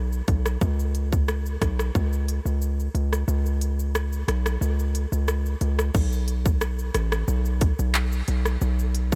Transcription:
Already playing: 808-style bass B1
0.12 shaker
0.28 808-style bass B1, kick, closed hi-hat, shaker
0.46 cross-stick, shaker
0.61 808-style bass C#2, kick, shaker
0.79 shaker
0.95 closed hi-hat, shaker
1.13 kick, shaker
1.28 cross-stick, shaker
1.46 shaker
1.62 808-style bass B1, kick, cross-stick, closed hi-hat, shaker
1.79 cross-stick, shaker
1.95 808-style bass C#2, kick, shaker
2.13 shaker
2.28 closed hi-hat, shaker
2.46 808-style bass C#2, shaker
2.62 shaker
2.80 shaker
2.95 808-style bass C#2, closed hi-hat, shaker
3.13 cross-stick, shaker
3.28 808-style bass C#2, shaker
3.46 shaker
3.61 closed hi-hat, shaker
3.79 shaker
3.95 cross-stick, shaker
4.13 shaker
4.28 808-style bass B1, cross-stick, closed hi-hat, shaker
4.46 cross-stick, shaker
4.61 808-style bass C#2, shaker
4.79 shaker
4.95 closed hi-hat, shaker
5.12 808-style bass C#2, shaker
5.28 cross-stick, shaker
5.46 shaker
5.61 808-style bass C#2, closed hi-hat, shaker
5.79 cross-stick, shaker
5.95 808-style bass B1, kick, crash, shaker
6.12 shaker
6.28 closed hi-hat, shaker
6.46 kick, shaker
6.61 cross-stick, shaker
6.79 shaker
6.94 808-style bass A1, cross-stick, closed hi-hat, shaker
7.12 cross-stick, shaker
7.28 808-style bass B1, shaker
7.45 shaker
7.61 kick, closed hi-hat, shaker
7.79 808-style bass B1, shaker
7.94 clap, shaker
8.12 shaker
8.28 808-style bass B1, closed hi-hat, shaker
8.45 cross-stick, shaker
8.61 808-style bass B1, shaker
8.79 shaker
8.95 closed hi-hat, shaker

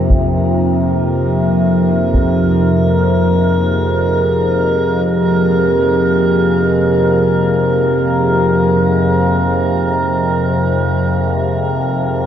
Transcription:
Already playing: synth drone F2 C3, ambient pad F3 A#3 D#4 A#4 C5
0.10 synth drone A#4, taiko
0.53 ambient pad G#4
2.13 taiko

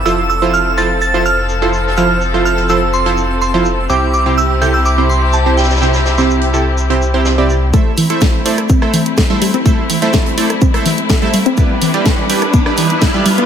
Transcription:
Already playing: synth texture E6
0.06 detuned saw bass F1, supersaw synth F3 E4 F4 A4 C5, string section F3 C4 A4, synth bell E6, shaker
0.30 synth bell E6, shaker
0.42 supersaw synth F3 E4 F4 A4 C5
0.54 synth bell F6, shaker
0.78 supersaw synth F3 E4 F4 A4 C5, synth bell A6, shaker
1.01 synth bell A6, shaker
1.14 supersaw synth F3 E4 F4 A4 C5
1.25 synth bell F6, shaker
1.49 shaker
1.62 supersaw synth F3 E4 F4 A4 C5
1.73 shaker
1.87 snare
1.97 supersaw synth F3 E4 F4 A4 C5, synth bell F6, shaker
2.21 shaker
2.34 supersaw synth F3 E4 F4 A4 C5
2.45 synth bell F6, shaker
2.58 closed hi-hat
2.69 supersaw synth F3 E4 F4 A4 C5, synth bell E6, shaker
2.94 synth bell C6, shaker
3.06 supersaw synth F3 E4 F4 A4 C5, closed hi-hat
3.17 shaker
3.42 synth bell C6, shaker
3.54 supersaw synth F3 E4 F4 A4 C5
3.65 shaker
3.89 detuned saw bass C2, string section C3 E4 G4, supersaw synth C3 C4 E4 G4 C5, synth bell D6, shaker
4.14 synth bell D6, shaker
4.26 supersaw synth C3 C4 E4 G4 C5
4.38 synth bell E6, shaker
4.62 supersaw synth C3 C4 E4 G4 A4, synth bell G6, shaker
4.74 synth bell E6
4.85 synth bell D6, shaker
4.98 supersaw synth C3 C4 E4 G4 C5
5.09 synth bell C6, shaker
5.33 synth bell A5, shaker
5.46 supersaw synth C3 C4 E4 G4 C5
5.57 synth bell G5, snare, shaker
5.64 snare, shaker
5.70 snare, shaker
5.76 snare, shaker
5.82 supersaw synth C3 C4 E4 G4 C5, snare, shaker
5.94 snare, shaker
6.06 snare, shaker
6.18 supersaw synth C3 C4 E4 G4 C5, snare, shaker
6.30 shaker
6.41 closed hi-hat
6.54 supersaw synth C3 C4 E4 G4 A4, shaker
6.78 shaker
6.90 supersaw synth C3 C4 E4 G4 C5, closed hi-hat
7.02 shaker
7.14 supersaw synth C3 C4 E4 G4 C5
7.25 snare, shaker
7.38 supersaw synth C3 C4 E4 G4 D5
7.50 shaker
7.74 string section A3 C4 E4, supersaw synth A3 E4 A4 C5 E5, synth pluck A3, kick, closed hi-hat, riser, shaker
7.86 detuned saw bass A1
7.97 detuned saw bass A1, synth pluck E3, open hi-hat, shaker
8.10 detuned saw bass A1, supersaw synth A3 E4 A4 C5 E5, closed hi-hat
8.21 synth pluck A4, kick, snare, closed hi-hat, shaker
8.34 detuned saw bass A1
8.46 detuned saw bass A2, supersaw synth A3 E4 A4 C5 D5, open hi-hat, shaker
8.58 detuned saw bass A1, cross-stick, closed hi-hat
8.69 synth pluck C4, kick, closed hi-hat, shaker
8.82 supersaw synth A3 E4 A4 C5 E5, cross-stick
8.94 detuned saw bass A1, synth pluck E3, open hi-hat, shaker
9.06 detuned saw bass A1, closed hi-hat
9.17 synth pluck A4, kick, snare, closed hi-hat, shaker
9.30 synth pluck G3, supersaw synth A3 E4 A4 C5 E5
9.42 synth pluck G3, open hi-hat, shaker
9.54 synth pluck C4, closed hi-hat
9.66 supersaw synth A3 E4 A4 C5 E5, synth pluck A3, kick, closed hi-hat, shaker
9.90 synth pluck E3, open hi-hat, shaker
10.02 supersaw synth A3 E4 A4 C5 E5, snare, closed hi-hat
10.13 synth pluck A4, kick, snare, closed hi-hat, shaker
10.26 closed hi-hat
10.38 detuned saw bass A2, supersaw synth A3 E4 A4 C5 D5, open hi-hat, shaker
10.50 detuned saw bass A1, cross-stick, closed hi-hat
10.61 synth pluck C4, kick, closed hi-hat, shaker
10.74 supersaw synth A3 E4 A4 C5 E5, cross-stick, closed hi-hat
10.86 synth pluck E3, snare, open hi-hat, shaker
10.98 detuned saw bass A1, closed hi-hat
11.09 synth pluck A4, kick, snare, closed hi-hat, shaker
11.22 synth pluck G3, supersaw synth A3 E4 A4 C5 E5
11.33 detuned saw bass A1, synth pluck G3, open hi-hat, shaker
11.46 synth pluck C4, closed hi-hat
11.57 string section G3 D4 B4, supersaw synth G3 E4 G4 B4 D5, synth pluck A3, kick, closed hi-hat, shaker
11.82 synth pluck E3, open hi-hat, shaker
11.94 supersaw synth G3 E4 G4 B4 D5, closed hi-hat
12.06 synth pluck A4, kick, snare, closed hi-hat, shaker
12.30 detuned saw bass G2, supersaw synth G3 E4 G4 B4 D5, open hi-hat, shaker
12.42 detuned saw bass G1, cross-stick, closed hi-hat
12.54 synth pluck B3, kick, closed hi-hat, shaker
12.66 supersaw synth G3 E4 G4 B4 D5, cross-stick
12.77 synth pluck E3, open hi-hat, shaker
12.90 detuned saw bass G1, closed hi-hat
13.02 synth pluck A4, kick, snare, closed hi-hat, shaker
13.14 supersaw synth G3 E4 G4 B4 D5, synth pluck G3
13.26 synth pluck G3, open hi-hat, shaker
13.38 detuned saw bass G1, synth pluck B3, closed hi-hat

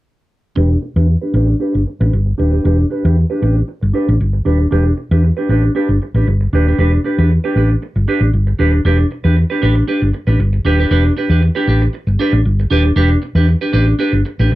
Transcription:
0.56 fingered electric bass E1, clean electric guitar D4 G4 B4
0.70 muted clean electric guitar stroke
0.82 muted clean electric guitar stroke
0.96 fingered electric bass E2, clean electric guitar D4 G4 B4
1.08 muted clean electric guitar stroke
1.22 clean electric guitar D4 G4 B4
1.34 fingered electric bass A1, clean electric guitar D4 G4 B4
1.47 muted clean electric guitar stroke
1.60 clean electric guitar D4 G4 B4
1.74 fingered electric bass G1, muted clean electric guitar stroke
1.86 muted clean electric guitar stroke
2.00 fingered electric bass A1, clean electric guitar D4 G4 B4
2.13 fingered electric bass G1, muted clean electric guitar stroke
2.26 muted clean electric guitar stroke
2.38 fingered electric bass D#1, clean electric guitar D4 G4 B4
2.52 clean electric guitar D4 G4 B4
2.64 fingered electric bass E1, clean electric guitar D4 G4 B4
2.78 muted clean electric guitar stroke
2.90 clean electric guitar D4 G4 B4
3.05 fingered electric bass E2, clean electric guitar D4 G4 B4
3.17 muted clean electric guitar stroke
3.30 clean electric guitar D4 G4 B4
3.42 fingered electric bass A1, clean electric guitar D4 G4 B4
3.56 muted clean electric guitar stroke
3.68 muted clean electric guitar stroke
3.81 fingered electric bass G1, muted clean electric guitar stroke
3.94 clean electric guitar D4 G4 B4
4.08 fingered electric bass A1, muted clean electric guitar stroke
4.20 fingered electric bass G1
4.33 muted clean electric guitar stroke
4.45 fingered electric bass D#1, clean electric guitar D4 G4 B4
4.59 muted clean electric guitar stroke
4.71 fingered electric bass E1, clean electric guitar D4 G4 B4
4.85 muted clean electric guitar stroke
4.97 muted clean electric guitar stroke
5.11 fingered electric bass E2, clean electric guitar D4 G4 B4
5.24 muted clean electric guitar stroke
5.37 clean electric guitar D4 G4 B4
5.49 fingered electric bass A1, clean electric guitar D4 G4 B4
5.63 muted clean electric guitar stroke
5.75 clean electric guitar D4 G4 B4
5.89 fingered electric bass G1, muted clean electric guitar stroke
6.02 muted clean electric guitar stroke
6.14 fingered electric bass A1, clean electric guitar D4 G4 B4
6.27 fingered electric bass G1, muted clean electric guitar stroke
6.41 muted clean electric guitar stroke
6.53 fingered electric bass D#1, clean electric guitar D4 G4 B4
6.67 clean electric guitar D4 G4 B4
6.78 fingered electric bass E1, clean electric guitar D4 G4 B4
6.93 muted clean electric guitar stroke
7.04 clean electric guitar D4 G4 B4
7.18 fingered electric bass E2, clean electric guitar D4 G4 B4
7.31 muted clean electric guitar stroke
7.44 clean electric guitar D4 G4 B4
7.56 fingered electric bass A1, clean electric guitar D4 G4 B4
7.70 muted clean electric guitar stroke
7.82 muted clean electric guitar stroke
7.96 fingered electric bass G1, muted clean electric guitar stroke
8.08 clean electric guitar D4 G4 B4
8.21 fingered electric bass A1, muted clean electric guitar stroke
8.33 fingered electric bass G1
8.47 muted clean electric guitar stroke
8.59 fingered electric bass D#1, clean electric guitar D4 G4 B4
8.73 muted clean electric guitar stroke
8.85 fingered electric bass E1, clean electric guitar D4 G4 B4
8.98 muted clean electric guitar stroke
9.11 muted clean electric guitar stroke
9.24 fingered electric bass E2, clean electric guitar D4 G4 B4
9.37 muted clean electric guitar stroke
9.50 clean electric guitar D4 G4 B4
9.62 fingered electric bass A1, clean electric guitar D4 G4 B4
9.76 muted clean electric guitar stroke
9.88 clean electric guitar D4 G4 B4
10.02 fingered electric bass G1, muted clean electric guitar stroke
10.13 muted clean electric guitar stroke
10.27 fingered electric bass A1, clean electric guitar D4 G4 B4
10.39 fingered electric bass G1, muted clean electric guitar stroke
10.53 muted clean electric guitar stroke
10.65 fingered electric bass D#1, clean electric guitar D4 G4 B4
10.80 clean electric guitar D4 G4 B4
10.91 fingered electric bass E1, clean electric guitar D4 G4 B4
11.05 muted clean electric guitar stroke
11.17 clean electric guitar D4 G4 B4
11.30 fingered electric bass E2, clean electric guitar D4 G4 B4
11.42 muted clean electric guitar stroke
11.55 clean electric guitar D4 G4 B4
11.68 fingered electric bass A1, clean electric guitar D4 G4 B4
11.82 muted clean electric guitar stroke
11.93 muted clean electric guitar stroke
12.07 fingered electric bass G1, muted clean electric guitar stroke
12.19 clean electric guitar D4 G4 B4
12.33 fingered electric bass A1, muted clean electric guitar stroke
12.45 fingered electric bass G1
12.60 muted clean electric guitar stroke
12.71 fingered electric bass D#1, clean electric guitar D4 G4 B4
12.84 muted clean electric guitar stroke
12.96 fingered electric bass E1, clean electric guitar D4 G4 B4
13.10 muted clean electric guitar stroke
13.22 muted clean electric guitar stroke
13.35 fingered electric bass E2, clean electric guitar D4 G4 B4
13.61 clean electric guitar D4 G4 B4
13.73 fingered electric bass A1, clean electric guitar D4 G4 B4
13.87 muted clean electric guitar stroke
13.99 clean electric guitar D4 G4 B4
14.13 fingered electric bass G1, muted clean electric guitar stroke
14.26 muted clean electric guitar stroke
14.39 fingered electric bass A1, clean electric guitar D4 G4 B4
14.51 fingered electric bass G1, muted clean electric guitar stroke

